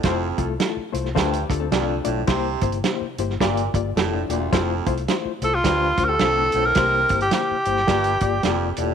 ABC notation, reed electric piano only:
X:1
M:4/4
L:1/8
Q:"Swing" 1/4=107
K:F
V:1 name="Reed electric piano"
[A,EFc] [A,EFA] [A,EFA] [A,EFc] [A,DFc] [A,DFA] [A,DFd] [A,DFd] | [B,EGc] [B,EGc] [B,EGc] [B,EGc] [B,FGd] [B,FGd] [B,FGA] [B,FGd] | [A,EFc] [A,EFc] [A,EFc] [A,EFc] [A,DFc] [A,DFc] [A,DFc] [A,DFc] | [B,EGc] [B,EGc] [B,EGc] [B,EGc] [B,FGd] [B,FGd] [B,FGd] [B,FGd] |]
V:2 name="Reed electric piano" clef=bass
z4 D,3 z | C,3 z G,,3 z | z4 D,3 z | C,3 z G,,3 z |]